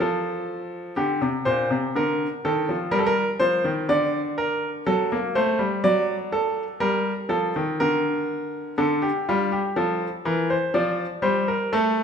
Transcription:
0.00 0.94 F3 medium
0.00 0.94 A4 medium
0.96 1.20 D3 medium
0.96 1.27 G4 medium
1.21 1.45 C3 medium
1.45 1.69 A#2 medium
1.45 1.76 C5 medium
1.71 1.94 C3 medium
1.96 2.25 D3 medium
1.96 2.26 A#4 medium
2.45 2.68 D#3 medium
2.45 2.74 A4 medium
2.69 2.92 F3 medium
2.91 3.21 G3 medium
2.91 2.96 A#4 medium
2.99 3.06 A4 medium
3.06 3.27 A#4 medium
3.39 3.63 F3 medium
3.39 3.70 C5 medium
3.64 3.88 D#3 medium
3.89 4.83 D3 medium
3.89 4.19 D5 medium
4.38 4.68 A#4 medium
4.87 5.10 F#3 medium
4.87 5.16 A4 medium
5.12 5.35 A#3 medium
5.35 5.58 A3 medium
5.35 5.65 C5 medium
5.59 5.82 G3 medium
5.84 6.78 F#3 medium
5.84 6.14 D5 medium
6.32 6.62 A4 medium
6.80 7.11 G3 medium
6.80 7.11 A#4 medium
7.29 7.53 F3 medium
7.29 7.60 A4 medium
7.56 7.79 D#3 medium
7.80 8.75 D3 medium
7.80 8.75 A#4 medium
8.78 9.08 D3 medium
8.78 9.01 A4 medium
9.02 9.26 G4 medium
9.29 9.59 G3 medium
9.29 9.51 F4 medium
9.52 9.75 G4 medium
9.76 10.07 F3 medium
9.76 10.07 A4 medium
10.25 10.56 E3 medium
10.25 10.49 A#4 medium
10.50 10.73 C5 medium
10.74 11.04 F3 medium
10.74 11.05 D5 medium
11.22 11.53 G3 medium
11.22 11.46 C5 medium
11.48 11.72 A#4 medium
11.73 12.03 A3 medium
11.73 12.04 A4 medium

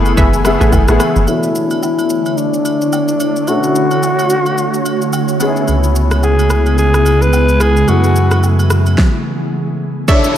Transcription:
0.00 0.15 F#1 loud
0.00 1.25 E3 medium
0.00 0.45 A3 medium
0.00 1.25 A3 medium
0.00 0.45 B3 medium
0.00 1.25 B3 medium
0.00 0.46 E4 medium
0.00 0.46 G#4 loud
0.00 1.25 G#5 medium
0.05 high agogo medium
0.05 shaker soft
0.17 0.57 F#1 loud
0.17 0.33 G#4 medium
0.17 0.33 A4 medium
0.17 0.33 B4 medium
0.17 0.34 E5 loud
0.17 kick loud
0.17 shaker medium
0.33 shaker medium
0.45 0.79 A3 medium
0.45 0.79 B3 medium
0.45 0.79 E4 medium
0.45 0.79 G#4 loud
0.45 cross-stick loud
0.45 high agogo medium
0.45 shaker medium
0.60 0.71 A1 medium
0.60 0.72 G#4 medium
0.60 0.73 A4 medium
0.60 0.73 B4 medium
0.60 0.73 E5 medium
0.60 shaker medium
0.72 0.87 F#1 loud
0.72 kick medium
0.72 high agogo medium
0.72 low woodblock medium
0.72 shaker medium
0.88 0.99 A1 medium
0.88 1.20 A3 medium
0.88 1.21 B3 medium
0.88 1.21 E4 medium
0.88 1.21 G#4 medium
0.88 cross-stick medium
0.88 shaker medium
1.00 cross-stick medium
1.00 high agogo medium
1.00 shaker loud
1.16 1.26 F#1 medium
1.16 shaker soft
1.27 3.43 B2 medium
1.27 5.36 D3 medium
1.27 5.36 A3 medium
1.27 3.44 D4 medium
1.27 3.45 E4 medium
1.27 1.79 E4 medium
1.27 3.44 E4 medium
1.27 3.45 A4 medium
1.27 5.36 C#5 medium
1.27 3.44 C#5 medium
1.27 high agogo medium
1.27 shaker medium
1.43 shaker medium
1.55 shaker medium
1.71 high agogo medium
1.71 shaker soft
1.83 2.40 E4 medium
1.83 low woodblock medium
1.83 shaker medium
1.99 high agogo medium
1.99 shaker medium
2.10 shaker medium
2.26 high agogo medium
2.26 shaker soft
2.38 3.50 D4 medium
2.38 shaker medium
2.54 shaker medium
2.65 high agogo medium
2.65 shaker medium
2.81 shaker soft
2.93 high agogo medium
2.93 low woodblock medium
2.93 shaker medium
3.08 shaker medium
3.20 high agogo medium
3.20 shaker medium
3.36 shaker soft
3.47 5.36 B2 medium
3.47 5.36 C#4 medium
3.47 5.37 D4 medium
3.47 5.37 E4 medium
3.47 5.38 F#4 medium
3.47 5.13 F#4 loud
3.47 5.37 A4 medium
3.47 high agogo medium
3.47 shaker medium
3.63 shaker medium
3.75 shaker medium
3.91 high agogo medium
3.91 shaker soft
4.03 low woodblock medium
4.03 shaker medium
4.19 high agogo medium
4.19 shaker medium
4.30 shaker medium
4.46 high agogo medium
4.46 shaker soft
4.58 shaker medium
4.74 shaker medium
4.85 high agogo medium
4.85 shaker medium
5.02 shaker soft
5.13 high agogo medium
5.13 low woodblock medium
5.13 shaker medium
5.28 shaker medium
5.40 7.86 C#3 medium
5.40 7.86 G#3 medium
5.40 7.56 B3 medium
5.40 8.95 B3 medium
5.40 7.57 C#4 medium
5.40 5.48 D#4 medium
5.40 7.86 E4 medium
5.40 7.57 G#4 medium
5.40 high agogo medium
5.40 shaker medium
5.48 7.60 E4 medium
5.56 shaker soft
5.68 7.84 C#2 medium
5.68 high agogo medium
5.68 shaker medium
5.84 shaker medium
5.96 shaker medium
6.11 cross-stick medium
6.11 high agogo medium
6.11 shaker soft
6.23 6.74 G#4 medium
6.23 low woodblock medium
6.23 shaker medium
6.39 high agogo medium
6.39 shaker medium
6.50 cross-stick medium
6.50 shaker medium
6.66 high agogo medium
6.66 shaker soft
6.78 7.23 G#4 loud
6.78 shaker medium
6.94 cross-stick medium
6.94 shaker medium
7.06 high agogo medium
7.06 shaker medium
7.22 7.63 B4 loud
7.22 shaker soft
7.33 high agogo medium
7.33 low woodblock medium
7.33 shaker medium
7.49 shaker medium
7.60 7.90 G#4 medium
7.60 cross-stick medium
7.60 high agogo medium
7.60 shaker medium
7.77 shaker soft
7.87 8.96 F#2 medium
7.87 8.97 E3 medium
7.87 8.96 A3 medium
7.87 8.97 A3 medium
7.87 8.96 B3 medium
7.87 8.96 E4 medium
7.87 8.43 F#4 medium
7.87 8.97 G#4 medium
7.87 high agogo medium
7.87 shaker medium
8.04 shaker medium
8.16 shaker medium
8.31 cross-stick medium
8.31 high agogo medium
8.31 shaker soft
8.43 low woodblock medium
8.43 shaker medium
8.59 high agogo medium
8.59 shaker medium
8.70 cross-stick medium
8.70 shaker medium
8.86 high agogo medium
8.86 shaker soft
8.98 kick loud
8.98 snare medium
10.08 10.38 D3 medium
10.08 10.38 A3 medium
10.08 10.38 B3 medium
10.08 10.38 D4 medium
10.08 10.38 E4 medium
10.08 10.38 A4 medium
10.08 10.38 A4 loud
10.08 10.38 C#5 medium
10.08 10.38 D5 medium
10.08 10.38 E5 loud
10.08 kick loud
10.08 downlifter medium
10.08 shaker medium
10.24 shaker medium

